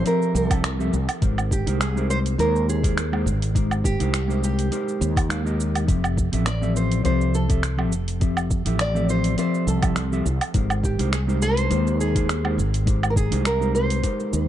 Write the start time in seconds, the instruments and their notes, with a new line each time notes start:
Already playing: downlifter
0.05 clean electric guitar F3 C4 G4 A4 E5, nylon-string guitar A#4, open hi-hat, cabasa
0.22 cabasa
0.35 fretless electric bass C2, nylon-string guitar A4, cabasa
0.50 clean electric guitar F3 C4 G4 A4 E5, kick, open hi-hat, cabasa, low woodblock
0.64 finger snap, open hi-hat, cabasa
0.79 clean electric guitar F3 C4 G4 A4 E5, cabasa
0.93 fretless electric bass C2, cabasa
1.09 open hi-hat, cabasa, low woodblock
1.21 fretless electric bass G#1, clean electric guitar G#3 D#4 G4 A#4 C5, kick, open hi-hat, cabasa
1.38 cabasa, low woodblock
1.51 nylon-string guitar G4, kick, cabasa
1.66 fretless electric bass C2, clean electric guitar G#3 D#4 G4 A#4 C5, open hi-hat, cabasa
1.81 nylon-string guitar G#4, finger snap, open hi-hat, cabasa
1.96 clean electric guitar G#3 D#4 G4 A#4 C5, cabasa
2.10 nylon-string guitar C5, cabasa
2.26 open hi-hat, cabasa
2.38 fretless electric bass D#2, clean electric guitar G#3 D#4 G4 A#4 C5, nylon-string guitar A#4, open hi-hat, cabasa
2.56 cabasa
2.69 nylon-string guitar G#4, cabasa
2.83 clean electric guitar G#3 D#4 G4 A#4 C5, kick, open hi-hat, cabasa
2.98 finger snap, open hi-hat, cabasa
3.12 clean electric guitar G#3 D#4 G4 A#4 C5, low woodblock
3.26 fretless electric bass G#1, cabasa
3.42 open hi-hat, cabasa
3.55 clean electric guitar G#3 D#4 G4 A#4 C5, kick, open hi-hat, cabasa
3.71 cabasa, low woodblock
3.84 nylon-string guitar G4, kick, cabasa
4.00 fretless electric bass C2, clean electric guitar G#3 D#4 G4 A#4 C5, open hi-hat, cabasa
4.14 finger snap, open hi-hat, cabasa
4.28 clean electric guitar G#3 D#4 G4 A#4 C5, cabasa
4.44 nylon-string guitar G4, cabasa
4.59 open hi-hat, cabasa
4.71 clean electric guitar G#3 D#4 G4 A#4 C5, open hi-hat, cabasa
4.88 cabasa
5.01 fretless electric bass D#2, cabasa
5.16 kick, open hi-hat, cabasa, low woodblock
5.29 clean electric guitar G#3 D#4 G4 A#4 F5, finger snap, open hi-hat, cabasa
5.44 clean electric guitar G#3 D#4 G4 A#4 D#5, cabasa
5.60 cabasa
5.75 open hi-hat, cabasa, low woodblock
5.87 fretless electric bass F1, clean electric guitar F3 C4 G4 A4 E5, kick, open hi-hat, cabasa
6.04 cabasa, low woodblock
6.17 kick, cabasa
6.32 fretless electric bass A1, clean electric guitar F3 C4 G4 A4 E5, open hi-hat, cabasa
6.46 nylon-string guitar D5, finger snap, open hi-hat, cabasa
6.61 clean electric guitar F3 C4 G4 A4 E5, cabasa
6.76 nylon-string guitar C5, cabasa
6.92 open hi-hat, cabasa
7.03 fretless electric bass C2, clean electric guitar F3 C4 G4 A4 E5, nylon-string guitar C5, open hi-hat, cabasa
7.21 cabasa
7.34 nylon-string guitar A4, cabasa
7.49 clean electric guitar F3 C4 G4 A4 E5, kick, open hi-hat, cabasa
7.63 finger snap, open hi-hat, cabasa
7.77 clean electric guitar F3 C4 G4 A4 E5, low woodblock
7.92 fretless electric bass F1, cabasa
8.08 open hi-hat, cabasa
8.20 clean electric guitar F3 C4 G4 A4 E5, kick, open hi-hat, cabasa
8.37 cabasa, low woodblock
8.51 kick, cabasa
8.65 fretless electric bass A1, clean electric guitar F3 C4 G4 A4 E5, open hi-hat, cabasa
8.79 nylon-string guitar D5, finger snap, open hi-hat, cabasa
8.94 clean electric guitar F3 C4 G4 A4 E5, cabasa
9.09 nylon-string guitar C5, cabasa
9.24 open hi-hat, cabasa
9.37 clean electric guitar F3 C4 G4 A4 E5, nylon-string guitar C5, open hi-hat, cabasa
9.54 cabasa
9.67 fretless electric bass C2, nylon-string guitar A4, cabasa
9.82 clean electric guitar F3 C4 G4 A4 E5, kick, open hi-hat, cabasa, low woodblock
9.96 finger snap, open hi-hat, cabasa
10.11 clean electric guitar F3 C4 G4 A4 E5, cabasa
10.25 fretless electric bass C2, cabasa
10.41 open hi-hat, cabasa, low woodblock
10.54 fretless electric bass G#1, clean electric guitar G#3 D#4 G4 A#4 C5, kick, open hi-hat, cabasa
10.70 cabasa, low woodblock
10.83 nylon-string guitar G4, kick, cabasa
10.99 fretless electric bass C2, clean electric guitar G#3 D#4 G4 A#4 C5, open hi-hat, cabasa
11.13 nylon-string guitar G#4, finger snap, open hi-hat, cabasa
11.27 clean electric guitar G#3 D#4 G4 A#4 C5, cabasa
11.42 nylon-string guitar C5, cabasa
11.57 open hi-hat, cabasa
11.70 fretless electric bass D#2, clean electric guitar G#3 D#4 G4 A#4 C5, open hi-hat, cabasa
11.87 cabasa
12.01 nylon-string guitar G#4, cabasa
12.14 clean electric guitar G#3 D#4 G4 A#4 C5, kick, open hi-hat, cabasa
12.29 finger snap, open hi-hat, cabasa
12.44 clean electric guitar G#3 D#4 G4 A#4 C5, low woodblock
12.58 fretless electric bass G#1, cabasa
12.74 open hi-hat, cabasa
12.86 clean electric guitar G#3 D#4 G4 A#4 C5, kick, open hi-hat, cabasa
13.03 cabasa, low woodblock
13.10 nylon-string guitar A#4
13.16 nylon-string guitar G#4, kick, cabasa
13.31 fretless electric bass C2, clean electric guitar G#3 D#4 G4 A#4 C5, open hi-hat, cabasa
13.45 nylon-string guitar A#4, finger snap, open hi-hat, cabasa
13.60 clean electric guitar G#3 D#4 G4 A#4 C5, cabasa
13.75 nylon-string guitar C5, cabasa
13.90 open hi-hat, cabasa
14.03 clean electric guitar G#3 D#4 G4 A#4 C5, kick, open hi-hat, cabasa
14.20 cabasa
14.33 fretless electric bass D#2, cabasa